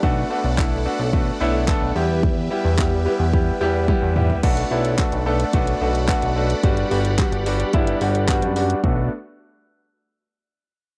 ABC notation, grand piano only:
X:1
M:4/4
L:1/8
Q:1/4=109
K:Bm
V:1 name="Grand piano"
[A,B,DF] [A,B,DF] [A,B,DE] [A,B,DF] [A,B,DF] [A,B,DE] [A,B,DA] [G,B,EG]- | [G,B,EG] [G,B,EG] [G,B,EG] [G,B,EG] [G,B,EG] [G,B,EG] [G,B,EG] [G,B,EG] | [A,B,DF] [A,B,DE] [A,B,DF] [A,B,DA] [A,B,DF] [A,B,DF] [A,B,DF] [A,B,DF] | [G,B,DF] [G,B,DF] [G,B,DF] [G,B,DF] [G,B,DE] [G,B,DF] [G,B,DF] [G,B,DF] |
[A,B,DF] z6 z |]